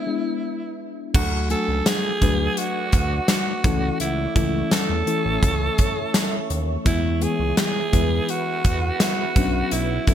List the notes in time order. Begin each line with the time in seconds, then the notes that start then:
Already playing: G#3 B3 D4 E4
0.07 G#3 B3 D4 E4
1.14 D2 F#3 A3 D4 F#4 A4 D5 F#5 D6, kick, crash
1.49 F#3 A3 D4 F#4 A4 G#5, closed hi-hat
1.68 C#2
1.86 G#4, snare, closed hi-hat, tambourine
2.21 D2 F#3 A3 D4 F#4 B4, kick, closed hi-hat
2.57 F#4, closed hi-hat
2.92 D2, kick, closed hi-hat
3.28 F#4, snare, closed hi-hat, tambourine
3.64 C#2 E3 A3 C#4 E4 A4 C#5 E5 C#6, kick, closed hi-hat
4.00 C#2 E4, closed hi-hat
4.35 C#2 E3 A3 C#4 E4 A4, kick, closed hi-hat
4.71 A4, snare, closed hi-hat, tambourine
4.90 E2
5.06 E3 A3 C#4 E4 A4, closed hi-hat
5.25 A1
5.43 C#2, kick, closed hi-hat
5.78 kick, closed hi-hat
6.14 snare, closed hi-hat, tambourine
6.50 D#2, closed hi-hat
6.85 E2 E3 G#3 B3 E4 G#4 B4 E5 B5, kick, closed hi-hat
7.21 E3 G#3 B3 E4 G#4, closed hi-hat
7.39 C#2
7.57 G#4, snare, closed hi-hat, tambourine
7.92 E2 E3 G#3 B3 E4 B4, kick, closed hi-hat
8.29 F#4, closed hi-hat
8.65 E2, kick, closed hi-hat
9.00 F#4, snare, closed hi-hat, tambourine
9.35 B1 F#3 B3 C#4 D4 F#4 F#5 C#6, kick, closed hi-hat
9.71 B1 E4, closed hi-hat
10.07 B1 F#3 B3 C#4 D4 E4 A4, kick, closed hi-hat